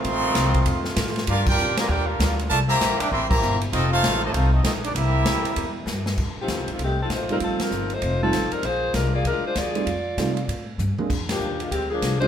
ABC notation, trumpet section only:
X:1
M:4/4
L:1/8
Q:"Swing" 1/4=196
K:F
V:1 name="Trumpet section"
[A_efc']6 z2 | [DGBf] [FBdg]2 [Gdfb] [FBdg] [DGBf]2 z | [FBda] [Gceb]2 [Begd'] [Begc'] [Gceb]2 z | [CFA_e] [_EAcf]2 [Fcea] [EAcf] [CFAe] [CFAe] [B,EGd] |
[CGBe]6 z2 | [K:Fmix] z8 | z8 | z8 |
z8 | z8 |]